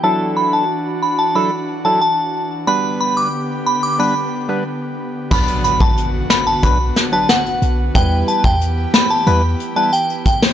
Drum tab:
CC |----------------|----------------|x---------------|----------------|
HH |----------------|----------------|-xx-x-x-x-x-xxx-|x-x-x-x-x-x-xxx-|
SD |----------------|----------------|------o---o-o---|------o--------o|
BD |----------------|----------------|o--o----o-------|o--o----------o-|